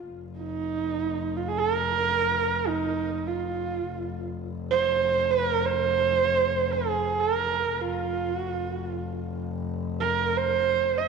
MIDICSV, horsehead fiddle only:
0, 0, Header, 1, 2, 480
1, 0, Start_track
1, 0, Tempo, 500000
1, 10638, End_track
2, 0, Start_track
2, 0, Title_t, "Horsehead fiddle"
2, 0, Program_c, 0, 110
2, 369, Note_on_c, 0, 63, 80
2, 1313, Note_on_c, 0, 65, 73
2, 1327, Note_off_c, 0, 63, 0
2, 1423, Note_on_c, 0, 68, 88
2, 1438, Note_off_c, 0, 65, 0
2, 1532, Note_on_c, 0, 70, 98
2, 1547, Note_off_c, 0, 68, 0
2, 2567, Note_on_c, 0, 63, 85
2, 2582, Note_off_c, 0, 70, 0
2, 3148, Note_on_c, 0, 65, 69
2, 3163, Note_off_c, 0, 63, 0
2, 4047, Note_off_c, 0, 65, 0
2, 4521, Note_on_c, 0, 72, 103
2, 5095, Note_on_c, 0, 70, 98
2, 5109, Note_off_c, 0, 72, 0
2, 5426, Note_on_c, 0, 72, 105
2, 5440, Note_off_c, 0, 70, 0
2, 6453, Note_on_c, 0, 68, 86
2, 6467, Note_off_c, 0, 72, 0
2, 6910, Note_on_c, 0, 70, 91
2, 6924, Note_off_c, 0, 68, 0
2, 7499, Note_on_c, 0, 65, 83
2, 7513, Note_off_c, 0, 70, 0
2, 8046, Note_off_c, 0, 65, 0
2, 8046, Note_on_c, 0, 66, 83
2, 8190, Note_off_c, 0, 66, 0
2, 8190, Note_on_c, 0, 65, 83
2, 8353, Note_off_c, 0, 65, 0
2, 8353, Note_on_c, 0, 66, 83
2, 8497, Note_off_c, 0, 66, 0
2, 8497, Note_on_c, 0, 65, 83
2, 9031, Note_off_c, 0, 65, 0
2, 9603, Note_on_c, 0, 70, 89
2, 9954, Note_on_c, 0, 72, 106
2, 9968, Note_off_c, 0, 70, 0
2, 10534, Note_on_c, 0, 75, 84
2, 10549, Note_off_c, 0, 72, 0
2, 10638, Note_off_c, 0, 75, 0
2, 10638, End_track
0, 0, End_of_file